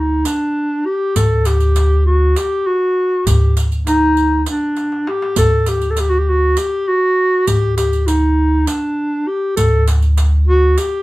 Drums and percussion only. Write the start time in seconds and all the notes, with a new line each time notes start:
0.25 riq, darbuka tek
1.16 riq, darbuka dum
1.45 riq, darbuka tek
1.60 riq, darbuka ka
1.76 riq, darbuka tek
2.07 darbuka ka
2.36 riq, darbuka tek
3.27 riq, darbuka dum
3.57 riq, darbuka tek
3.72 riq, darbuka ka
3.87 riq, darbuka tek
4.17 riq
4.46 riq, darbuka tek
4.76 riq, darbuka tek
4.92 darbuka ka
5.07 darbuka tek
5.22 darbuka ka
5.36 riq, darbuka dum
5.66 riq, darbuka tek
5.81 riq, darbuka ka
5.97 riq, darbuka tek
6.28 darbuka ka
6.57 riq, darbuka tek
7.47 riq, darbuka dum
7.78 riq, darbuka tek
7.93 riq, darbuka ka
8.08 riq, darbuka tek
8.38 darbuka ka
8.67 riq, darbuka tek
9.57 riq, darbuka dum
9.88 riq, darbuka tek
10.02 riq, darbuka ka
10.17 riq, darbuka tek
10.48 darbuka ka
10.78 riq, darbuka tek